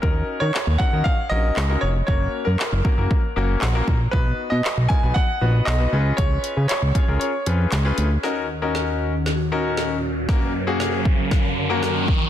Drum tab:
HH |--------|--------|--------|xxxxxxxx|
CP |--x---x-|--x---x-|--x---x-|--x---x-|
SD |--o---o-|--o---o-|--o---o-|--o---o-|
BD |o--oo---|o--oo--o|o--oo---|o--o----|

HH |--------|--------|
CP |--------|--------|
SD |o-o-o-o-|o-o-o-o-|
BD |--------|o--oo--o|